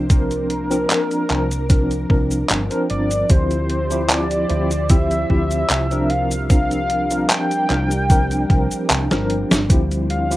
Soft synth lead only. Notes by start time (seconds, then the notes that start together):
0.11 A#4
2.90 D5
3.30 C5
4.10 D5
4.90 E5
6.10 F5
6.50 F5
7.30 G5
10.10 F5